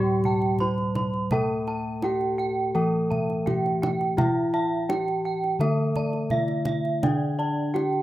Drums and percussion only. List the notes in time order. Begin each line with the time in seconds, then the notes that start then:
0.24 kendang low
0.42 kendang slap
0.58 kendang low
0.78 kendang slap
0.95 kendang slap, kendang high, kendang low
1.14 kendang slap
1.31 kendang high, kendang low
1.67 kendang slap
2.02 kendang slap, kendang high
2.21 kendang slap
2.40 kendang slap
2.75 kendang slap
3.12 kendang low
3.30 kendang slap
3.47 kendang low
3.66 kendang slap
3.83 kendang slap, kendang high, kendang low
4.01 kendang slap
4.18 kendang high, kendang low
4.54 kendang slap
4.90 kendang slap, kendang high
5.08 kendang slap
5.44 kendang slap
5.61 kendang slap, kendang high
5.96 kendang low
6.13 kendang slap
6.30 kendang low
6.48 kendang slap
6.65 kendang slap, kendang high, kendang low
6.85 kendang slap
7.03 kendang high, kendang low
7.40 kendang slap
7.76 kendang slap, kendang high
7.93 kendang slap